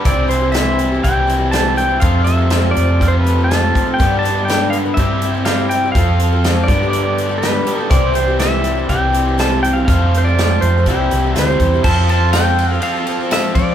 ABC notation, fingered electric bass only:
X:1
M:4/4
L:1/8
Q:1/4=122
K:Flyd
V:1 name="Fingered electric bass" clef=bass
C,,4 C,,4 | F,,3 F,,4 z | G,,4 G,,4 | F,,3 G,,4 z |
C,,4 C,,4 | F,,3 F,, C,, C,, D,, E,, | F,,4 z3 F, |]